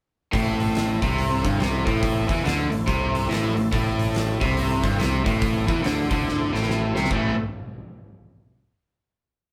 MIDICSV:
0, 0, Header, 1, 5, 480
1, 0, Start_track
1, 0, Key_signature, 0, "minor"
1, 0, Tempo, 423430
1, 375, Time_signature, 4, 2, 24, 8
1, 10802, End_track
2, 0, Start_track
2, 0, Title_t, "Tonewheel organ"
2, 0, Program_c, 0, 16
2, 369, Note_on_c, 0, 69, 68
2, 371, Note_on_c, 0, 64, 65
2, 379, Note_on_c, 0, 60, 66
2, 4176, Note_off_c, 0, 69, 0
2, 4177, Note_off_c, 0, 64, 0
2, 4182, Note_off_c, 0, 60, 0
2, 4212, Note_on_c, 0, 60, 63
2, 4213, Note_on_c, 0, 64, 67
2, 4216, Note_on_c, 0, 69, 67
2, 8022, Note_off_c, 0, 60, 0
2, 8023, Note_off_c, 0, 64, 0
2, 8025, Note_off_c, 0, 69, 0
2, 8054, Note_on_c, 0, 64, 69
2, 8056, Note_on_c, 0, 69, 69
2, 8064, Note_on_c, 0, 60, 65
2, 8427, Note_off_c, 0, 64, 0
2, 8428, Note_off_c, 0, 69, 0
2, 8431, Note_off_c, 0, 60, 0
2, 10802, End_track
3, 0, Start_track
3, 0, Title_t, "Overdriven electric guitar"
3, 0, Program_c, 1, 29
3, 366, Note_on_c, 1, 45, 107
3, 1140, Note_off_c, 1, 45, 0
3, 1159, Note_on_c, 1, 48, 100
3, 1626, Note_on_c, 1, 43, 105
3, 1627, Note_off_c, 1, 48, 0
3, 1804, Note_off_c, 1, 43, 0
3, 1806, Note_on_c, 1, 48, 96
3, 2101, Note_off_c, 1, 48, 0
3, 2107, Note_on_c, 1, 45, 103
3, 2582, Note_off_c, 1, 45, 0
3, 2590, Note_on_c, 1, 52, 100
3, 2767, Note_off_c, 1, 52, 0
3, 2771, Note_on_c, 1, 50, 91
3, 3063, Note_off_c, 1, 50, 0
3, 3067, Note_on_c, 1, 45, 78
3, 3216, Note_off_c, 1, 45, 0
3, 3249, Note_on_c, 1, 48, 112
3, 3728, Note_off_c, 1, 48, 0
3, 3732, Note_on_c, 1, 45, 98
3, 4023, Note_off_c, 1, 45, 0
3, 4036, Note_on_c, 1, 45, 75
3, 4182, Note_off_c, 1, 45, 0
3, 4217, Note_on_c, 1, 45, 101
3, 4990, Note_off_c, 1, 45, 0
3, 4995, Note_on_c, 1, 48, 104
3, 5470, Note_off_c, 1, 48, 0
3, 5475, Note_on_c, 1, 43, 97
3, 5653, Note_off_c, 1, 43, 0
3, 5659, Note_on_c, 1, 48, 101
3, 5944, Note_off_c, 1, 48, 0
3, 5949, Note_on_c, 1, 45, 103
3, 6426, Note_off_c, 1, 45, 0
3, 6430, Note_on_c, 1, 52, 100
3, 6605, Note_off_c, 1, 52, 0
3, 6609, Note_on_c, 1, 50, 95
3, 6903, Note_off_c, 1, 50, 0
3, 6916, Note_on_c, 1, 50, 109
3, 7391, Note_off_c, 1, 50, 0
3, 7403, Note_on_c, 1, 45, 95
3, 7874, Note_off_c, 1, 45, 0
3, 7879, Note_on_c, 1, 48, 96
3, 8056, Note_off_c, 1, 48, 0
3, 8060, Note_on_c, 1, 45, 83
3, 8069, Note_on_c, 1, 52, 95
3, 8077, Note_on_c, 1, 57, 113
3, 8302, Note_off_c, 1, 45, 0
3, 8306, Note_off_c, 1, 52, 0
3, 8310, Note_off_c, 1, 57, 0
3, 10802, End_track
4, 0, Start_track
4, 0, Title_t, "Picked electric bass"
4, 0, Program_c, 2, 34
4, 381, Note_on_c, 2, 33, 85
4, 1111, Note_off_c, 2, 33, 0
4, 1161, Note_on_c, 2, 36, 90
4, 1604, Note_off_c, 2, 36, 0
4, 1640, Note_on_c, 2, 31, 89
4, 1804, Note_off_c, 2, 31, 0
4, 1818, Note_on_c, 2, 36, 85
4, 2095, Note_off_c, 2, 36, 0
4, 2119, Note_on_c, 2, 33, 91
4, 2563, Note_off_c, 2, 33, 0
4, 2602, Note_on_c, 2, 40, 86
4, 2766, Note_off_c, 2, 40, 0
4, 2779, Note_on_c, 2, 38, 94
4, 3056, Note_off_c, 2, 38, 0
4, 3082, Note_on_c, 2, 33, 75
4, 3247, Note_off_c, 2, 33, 0
4, 3261, Note_on_c, 2, 36, 91
4, 3706, Note_off_c, 2, 36, 0
4, 3739, Note_on_c, 2, 33, 90
4, 4018, Note_off_c, 2, 33, 0
4, 4040, Note_on_c, 2, 33, 72
4, 4207, Note_off_c, 2, 33, 0
4, 4224, Note_on_c, 2, 33, 96
4, 4958, Note_off_c, 2, 33, 0
4, 5006, Note_on_c, 2, 36, 91
4, 5451, Note_off_c, 2, 36, 0
4, 5482, Note_on_c, 2, 31, 86
4, 5650, Note_off_c, 2, 31, 0
4, 5668, Note_on_c, 2, 36, 91
4, 5945, Note_off_c, 2, 36, 0
4, 5965, Note_on_c, 2, 33, 91
4, 6411, Note_off_c, 2, 33, 0
4, 6445, Note_on_c, 2, 40, 92
4, 6612, Note_off_c, 2, 40, 0
4, 6626, Note_on_c, 2, 38, 96
4, 6904, Note_off_c, 2, 38, 0
4, 6927, Note_on_c, 2, 38, 88
4, 7372, Note_off_c, 2, 38, 0
4, 7403, Note_on_c, 2, 33, 86
4, 7850, Note_off_c, 2, 33, 0
4, 7879, Note_on_c, 2, 36, 91
4, 8049, Note_off_c, 2, 36, 0
4, 8061, Note_on_c, 2, 33, 85
4, 8341, Note_off_c, 2, 33, 0
4, 10802, End_track
5, 0, Start_track
5, 0, Title_t, "Drums"
5, 378, Note_on_c, 9, 36, 104
5, 380, Note_on_c, 9, 46, 74
5, 492, Note_off_c, 9, 36, 0
5, 493, Note_off_c, 9, 46, 0
5, 680, Note_on_c, 9, 46, 56
5, 794, Note_off_c, 9, 46, 0
5, 853, Note_on_c, 9, 46, 78
5, 873, Note_on_c, 9, 38, 105
5, 966, Note_off_c, 9, 46, 0
5, 987, Note_off_c, 9, 38, 0
5, 1159, Note_on_c, 9, 36, 98
5, 1166, Note_on_c, 9, 46, 56
5, 1187, Note_on_c, 9, 38, 29
5, 1273, Note_off_c, 9, 36, 0
5, 1279, Note_off_c, 9, 46, 0
5, 1300, Note_off_c, 9, 38, 0
5, 1341, Note_on_c, 9, 46, 72
5, 1454, Note_off_c, 9, 46, 0
5, 1639, Note_on_c, 9, 36, 100
5, 1643, Note_on_c, 9, 46, 56
5, 1752, Note_off_c, 9, 36, 0
5, 1756, Note_off_c, 9, 46, 0
5, 1816, Note_on_c, 9, 46, 71
5, 1837, Note_on_c, 9, 38, 103
5, 1929, Note_off_c, 9, 46, 0
5, 1950, Note_off_c, 9, 38, 0
5, 2117, Note_on_c, 9, 46, 57
5, 2118, Note_on_c, 9, 36, 95
5, 2231, Note_off_c, 9, 36, 0
5, 2231, Note_off_c, 9, 46, 0
5, 2299, Note_on_c, 9, 36, 101
5, 2304, Note_on_c, 9, 46, 77
5, 2412, Note_off_c, 9, 36, 0
5, 2418, Note_off_c, 9, 46, 0
5, 2599, Note_on_c, 9, 36, 103
5, 2601, Note_on_c, 9, 46, 53
5, 2712, Note_off_c, 9, 36, 0
5, 2715, Note_off_c, 9, 46, 0
5, 2784, Note_on_c, 9, 46, 75
5, 2805, Note_on_c, 9, 38, 114
5, 2897, Note_off_c, 9, 46, 0
5, 2918, Note_off_c, 9, 38, 0
5, 3082, Note_on_c, 9, 46, 52
5, 3195, Note_off_c, 9, 46, 0
5, 3261, Note_on_c, 9, 36, 92
5, 3267, Note_on_c, 9, 46, 64
5, 3374, Note_off_c, 9, 36, 0
5, 3381, Note_off_c, 9, 46, 0
5, 3570, Note_on_c, 9, 46, 49
5, 3683, Note_off_c, 9, 46, 0
5, 3751, Note_on_c, 9, 46, 71
5, 3771, Note_on_c, 9, 38, 112
5, 3864, Note_off_c, 9, 46, 0
5, 3885, Note_off_c, 9, 38, 0
5, 4046, Note_on_c, 9, 46, 51
5, 4159, Note_off_c, 9, 46, 0
5, 4223, Note_on_c, 9, 36, 105
5, 4232, Note_on_c, 9, 46, 69
5, 4337, Note_off_c, 9, 36, 0
5, 4345, Note_off_c, 9, 46, 0
5, 4525, Note_on_c, 9, 46, 54
5, 4638, Note_off_c, 9, 46, 0
5, 4700, Note_on_c, 9, 46, 76
5, 4721, Note_on_c, 9, 38, 110
5, 4814, Note_off_c, 9, 46, 0
5, 4834, Note_off_c, 9, 38, 0
5, 5003, Note_on_c, 9, 36, 100
5, 5006, Note_on_c, 9, 46, 55
5, 5027, Note_on_c, 9, 38, 29
5, 5117, Note_off_c, 9, 36, 0
5, 5120, Note_off_c, 9, 46, 0
5, 5140, Note_off_c, 9, 38, 0
5, 5181, Note_on_c, 9, 46, 75
5, 5294, Note_off_c, 9, 46, 0
5, 5480, Note_on_c, 9, 46, 59
5, 5482, Note_on_c, 9, 36, 97
5, 5594, Note_off_c, 9, 46, 0
5, 5595, Note_off_c, 9, 36, 0
5, 5664, Note_on_c, 9, 46, 75
5, 5684, Note_on_c, 9, 38, 108
5, 5777, Note_off_c, 9, 46, 0
5, 5797, Note_off_c, 9, 38, 0
5, 5965, Note_on_c, 9, 36, 96
5, 5967, Note_on_c, 9, 46, 55
5, 6078, Note_off_c, 9, 36, 0
5, 6081, Note_off_c, 9, 46, 0
5, 6139, Note_on_c, 9, 46, 75
5, 6144, Note_on_c, 9, 36, 103
5, 6252, Note_off_c, 9, 46, 0
5, 6257, Note_off_c, 9, 36, 0
5, 6442, Note_on_c, 9, 46, 55
5, 6444, Note_on_c, 9, 36, 99
5, 6555, Note_off_c, 9, 46, 0
5, 6557, Note_off_c, 9, 36, 0
5, 6623, Note_on_c, 9, 46, 78
5, 6643, Note_on_c, 9, 38, 105
5, 6736, Note_off_c, 9, 46, 0
5, 6757, Note_off_c, 9, 38, 0
5, 6922, Note_on_c, 9, 46, 55
5, 6924, Note_on_c, 9, 36, 101
5, 7035, Note_off_c, 9, 46, 0
5, 7038, Note_off_c, 9, 36, 0
5, 7126, Note_on_c, 9, 38, 58
5, 7239, Note_off_c, 9, 38, 0
5, 7420, Note_on_c, 9, 38, 65
5, 7510, Note_off_c, 9, 38, 0
5, 7510, Note_on_c, 9, 38, 66
5, 7596, Note_off_c, 9, 38, 0
5, 7596, Note_on_c, 9, 38, 81
5, 7709, Note_off_c, 9, 38, 0
5, 7887, Note_on_c, 9, 38, 89
5, 7988, Note_off_c, 9, 38, 0
5, 7988, Note_on_c, 9, 38, 76
5, 8058, Note_on_c, 9, 36, 91
5, 8101, Note_off_c, 9, 38, 0
5, 8171, Note_off_c, 9, 36, 0
5, 10802, End_track
0, 0, End_of_file